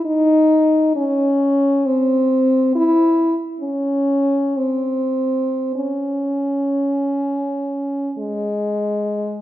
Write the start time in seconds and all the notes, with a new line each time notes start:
0.05 D#4
0.96 C#4
1.86 C4
2.75 E4
3.61 C#4
4.57 C4
5.75 C#4
8.18 G#3